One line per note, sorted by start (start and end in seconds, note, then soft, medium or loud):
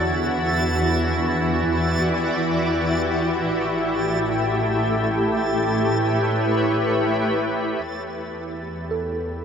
0.00 3.45 E2 medium
0.00 3.49 E3 medium
0.00 0.88 D4 medium
0.00 9.45 E4 medium
0.00 3.49 F#4 medium
0.00 7.88 A6 medium
1.08 9.45 G4 medium
1.08 3.49 D5 medium
3.50 7.81 A1 medium
3.50 7.87 A3 medium
5.19 9.45 B4 medium
5.48 7.87 C#5 medium
7.86 9.45 E2 medium
7.86 9.45 E3 medium
8.82 9.45 F#4 medium
8.91 9.45 A4 soft